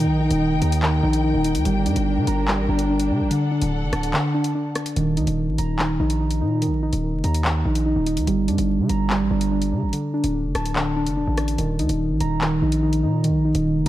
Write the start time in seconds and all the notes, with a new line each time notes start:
Already playing: D#4 A#4 G5 A#5
0.00 D#3
0.05 A#1
0.20 D#4
0.31 D#1, closed hi-hat
0.51 F#1
0.62 D#2 A#5, closed hi-hat
0.72 closed hi-hat
0.83 D#3, clap
1.03 A#1 D#4
1.13 closed hi-hat
1.24 D#4
1.34 D#1
1.44 D#4, closed hi-hat
1.55 D#2, closed hi-hat
1.65 G1 G3 D4 A#4, closed hi-hat
1.86 G2 D4, closed hi-hat
1.96 G1, closed hi-hat
2.17 D3
2.27 G1 A#5, closed hi-hat
2.48 G3, clap
2.58 A1
2.69 G1 D4
2.79 closed hi-hat
2.90 D4
3.00 closed hi-hat
3.10 D3 D4
3.21 G1
3.31 D3 A4 F#5, closed hi-hat
3.51 D4
3.61 D1, closed hi-hat
3.83 F#1
3.93 D1 A5, cross-stick, closed hi-hat
4.03 closed hi-hat
4.13 D3, clap
4.34 D4
4.44 closed hi-hat
4.55 D4
4.75 D4, cross-stick, closed hi-hat
4.86 closed hi-hat
4.96 D#1 D#3, closed hi-hat
5.17 D#2 D#4, closed hi-hat
5.27 D#1, closed hi-hat
5.48 A#1
5.58 D#1 A#5, closed hi-hat
5.79 D#3, clap
6.00 A#1 D#4
6.10 closed hi-hat
6.21 D#4
6.31 closed hi-hat
6.41 A#2 D#4
6.62 D#3, closed hi-hat
6.67 A#1
6.83 D#4
6.93 D#1, closed hi-hat
7.14 F#1
7.24 D#2 A#5, closed hi-hat
7.34 closed hi-hat
7.45 D#3, clap
7.65 A#1 D#4
7.75 closed hi-hat
7.86 D#4
7.96 D#1
8.07 D#4, closed hi-hat
8.17 D#2, closed hi-hat
8.27 G1 G3, closed hi-hat
8.48 G2 D4, closed hi-hat
8.58 G1, closed hi-hat
8.79 D3
8.89 G1 A#5, closed hi-hat
9.10 G3, clap
9.20 A1
9.31 G1 D4
9.41 closed hi-hat
9.51 D4
9.62 closed hi-hat
9.72 D3 D4
9.82 G1
9.93 D3, closed hi-hat
10.14 D4
10.24 D1, closed hi-hat
10.45 F#1
10.55 D1 A5, cross-stick, closed hi-hat
10.65 closed hi-hat
10.75 D3, clap
10.96 D4
11.06 F#1, closed hi-hat
11.17 D1 D4
11.27 A1
11.38 D4, cross-stick, closed hi-hat
11.48 closed hi-hat
11.58 D#1 D#3, closed hi-hat
11.79 D#2 D#4, closed hi-hat
11.89 D#1, closed hi-hat
12.10 A#1
12.20 D#1 A#5, closed hi-hat
12.41 D#3, clap
12.62 A#1 D#4
12.72 closed hi-hat
12.83 D#4
12.93 closed hi-hat
13.03 A#2 D#4
13.24 D#3, closed hi-hat
13.29 A#1
13.45 D#4
13.55 D#1, closed hi-hat
13.76 F#1